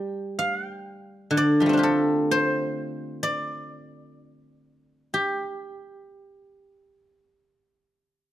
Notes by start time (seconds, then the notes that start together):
Already playing: G3 F5 G5 A5
0.39 F5
0.56 F#5
0.67 G5
1.31 D3
1.37 D5
1.60 F3 G3
1.66 A3 C4
1.73 D4
1.77 F4 G4
1.83 A4
2.31 C5
3.23 D5
5.14 G4